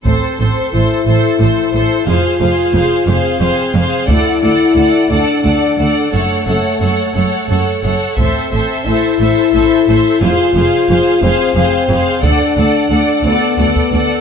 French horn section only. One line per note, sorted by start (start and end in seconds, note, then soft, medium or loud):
0.04 0.68 C4 medium
0.72 2.07 E4 medium
2.06 3.05 F4 medium
3.08 4.07 C4 medium
4.08 5.10 E4 medium
5.10 6.13 D4 medium
6.11 7.79 A3 medium
8.18 8.82 C4 medium
8.85 10.21 E4 medium
10.22 11.22 F4 medium
11.22 12.22 C4 medium
12.23 13.23 D4 medium
13.25 14.21 B3 medium